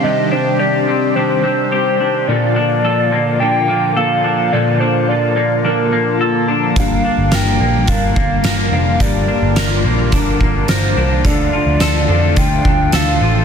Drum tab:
HH |--------|--------|--------|x-x-x-x-|
TB |--------|--------|--------|--x---x-|
SD |--------|--------|--------|--o---o-|
BD |--------|--------|--------|o---oo--|

HH |x-x-x-x-|x-x-x-x-|
TB |--x---x-|--x---x-|
SD |--o---o-|--o---o-|
BD |o---oo--|o---oo--|